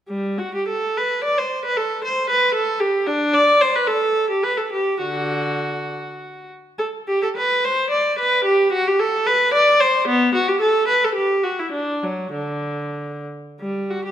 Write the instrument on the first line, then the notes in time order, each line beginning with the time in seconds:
viola
0.08 G3
0.39 F#4
0.55 G4
0.68 A4
0.97 B4
1.24 D5
1.38 C5
1.65 B4
1.77 A4
2.05 C5
2.30 B4
2.55 A4
2.80 G4
3.07 D4
3.33 D5
3.61 C5
3.76 B4
3.88 A4
4.30 G4
4.43 B4
4.58 A4
4.73 G4
5.02 D3 F#4
6.79 A4
7.08 G4
7.23 A4
7.37 B4
7.65 C5
7.91 D5
8.19 B4
8.45 G4
8.73 F#4
8.88 G4
9.00 A4
9.27 B4
9.54 D5
9.81 C5
10.08 B3
10.34 F#4
10.48 G4
10.61 A4
10.88 B4
11.04 A4
11.15 G4
11.44 F#4
11.59 E4
11.72 D4
12.03 F#3
12.33 D3
13.60 G3
13.91 F#4
14.05 G4